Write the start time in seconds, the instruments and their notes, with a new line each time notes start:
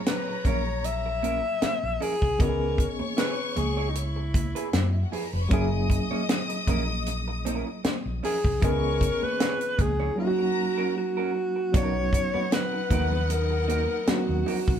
Already playing: reed electric piano A#2 F#3 C#4 E4 G#4, string section C#5 A#5
0.06 alto saxophone B4, snare, closed hi-hat
0.28 muted clean electric guitar stroke
0.45 fingered electric bass A#1, clean electric guitar C#4 E4 A#4, alto saxophone C#5, kick, closed hi-hat, muted conga, high conga, low conga
0.67 muted clean electric guitar stroke
0.84 alto saxophone E5, muted clean electric guitar stroke, closed hi-hat
1.06 muted clean electric guitar stroke
1.23 clean electric guitar C#4 E4 A#4, closed hi-hat, muted conga, high conga
1.44 muted clean electric guitar stroke
1.62 muted fingered electric bass stroke, muted clean electric guitar stroke, snare, closed hi-hat, muted conga, high conga
1.84 fingered electric bass A#1
2.00 clean electric guitar C#4 E4 A#4, alto saxophone G#4, open hi-hat, low conga
2.22 fingered electric bass C2, muted clean electric guitar stroke, kick
2.38 fingered electric bass C#2, reed electric piano E3 B3 C#4 D#5, clean electric guitar E4 G#4 B4, alto saxophone A#4, string section C#5 C#6, kick, closed hi-hat
2.43 reed electric piano F#4
2.49 reed electric piano G#4
2.78 kick, closed hi-hat
2.99 muted clean electric guitar stroke, muted fingered electric bass stroke, high conga
3.17 clean electric guitar E4 G#4 C#5, alto saxophone B4, snare, closed hi-hat, muted conga
3.56 fingered electric bass C#2, alto saxophone G#4, muted clean electric guitar stroke, closed hi-hat, muted conga, high conga, low conga
3.77 clean electric guitar E4 G#4 C#5
3.89 alto saxophone D#4
3.95 alto saxophone E4, muted clean electric guitar stroke, closed hi-hat
4.16 muted clean electric guitar stroke
4.34 kick, closed hi-hat, high conga
4.55 clean electric guitar E4 G#4 B4, closed hi-hat
4.73 fingered electric bass F#2, muted clean electric guitar stroke, snare, closed hi-hat, high conga
4.83 string section D#4 D#5
4.95 string section E4 E5
5.03 string section F#4 F#5
5.12 clean electric guitar E4 G#4 B4, string section G#4 G#5, open hi-hat, low conga
5.23 string section A#4 A#5
5.33 fingered electric bass F1, string section B4 B5, muted clean electric guitar stroke
5.42 string section C#5 C#6
5.49 fingered electric bass F#1, reed electric piano F#3 A#3 C#4 E4, clean electric guitar C#4 E4 A#4, string section D#5 D#6, kick, closed hi-hat, muted conga
5.54 reed electric piano G#4
5.72 muted clean electric guitar stroke
5.90 muted clean electric guitar stroke, kick, closed hi-hat
6.11 clean electric guitar C#4 E4 C#5, muted fingered electric bass stroke, high conga
6.29 snare, closed hi-hat, muted conga
6.50 muted clean electric guitar stroke, closed hi-hat
6.67 fingered electric bass A#1, clean electric guitar C#4 E4 A#4, kick, closed hi-hat, muted conga, high conga, low conga
6.89 muted clean electric guitar stroke
7.06 muted clean electric guitar stroke, closed hi-hat, muted conga
7.28 muted clean electric guitar stroke
7.45 clean electric guitar C#4 E4 A#4, closed hi-hat, muted conga, high conga
7.66 muted clean electric guitar stroke
7.84 muted clean electric guitar stroke, muted fingered electric bass stroke, snare, closed hi-hat, muted conga, high conga
8.06 fingered electric bass A#1
8.23 clean electric guitar C#4 E4 A#4, alto saxophone G#4, open hi-hat, muted conga, low conga
8.44 fingered electric bass C2, muted clean electric guitar stroke, kick
8.60 fingered electric bass C#2, reed electric piano E3 B3 C#4 D#5, clean electric guitar E4 G#4 B4, alto saxophone A#4, string section C#5 C#6, kick, closed hi-hat, muted conga
8.65 reed electric piano G#4
9.01 kick, closed hi-hat
9.22 alto saxophone B4, muted clean electric guitar stroke, muted fingered electric bass stroke, high conga
9.40 clean electric guitar E4 G#4 C#5, snare, closed hi-hat
9.61 closed hi-hat
9.79 fingered electric bass C#2, alto saxophone G#4, muted clean electric guitar stroke, kick, closed hi-hat, high conga, low conga
10.00 clean electric guitar E4 G#4 C#5, low conga
10.16 reed electric piano F#3 A#3 C#4 D#4, alto saxophone F#4, string section A#4 A#5, muted clean electric guitar stroke
10.21 reed electric piano E4
10.27 reed electric piano F#4
10.39 muted clean electric guitar stroke
10.78 clean electric guitar C#4 F#4 A#4
10.96 alto saxophone F#4, muted clean electric guitar stroke
11.17 clean electric guitar C#4 F#4 A#4
11.35 muted clean electric guitar stroke
11.56 muted clean electric guitar stroke
11.72 fingered electric bass B1, reed electric piano F#3 B3 C#4 D#4, string section B3 D#4 F#5, clean electric guitar D#4 F#4 A#4, alto saxophone C#5, kick, closed hi-hat, muted conga
11.77 reed electric piano F#4
11.95 muted clean electric guitar stroke
12.13 muted clean electric guitar stroke, kick, closed hi-hat
12.34 clean electric guitar D#4 F#4 B4, muted fingered electric bass stroke, high conga
12.51 alto saxophone B4, snare, closed hi-hat, muted conga
12.73 muted clean electric guitar stroke
12.91 fingered electric bass D#2, clean electric guitar D#4 F#4 A#4, kick, closed hi-hat, muted conga, high conga, low conga
13.12 muted clean electric guitar stroke, low conga
13.30 alto saxophone A#4, muted clean electric guitar stroke, closed hi-hat, muted conga
13.51 muted clean electric guitar stroke
13.68 clean electric guitar D#4 F#4 A#4, closed hi-hat, high conga
13.89 muted clean electric guitar stroke
14.07 reed electric piano F#3 B3 C#4 D4 A#4, alto saxophone F#4, muted clean electric guitar stroke, muted fingered electric bass stroke, snare, closed hi-hat, muted conga, high conga
14.15 reed electric piano D#4
14.29 fingered electric bass D#2
14.46 clean electric guitar D#4 F#4 A#4, open hi-hat, muted conga, low conga
14.67 fingered electric bass C2, muted clean electric guitar stroke, kick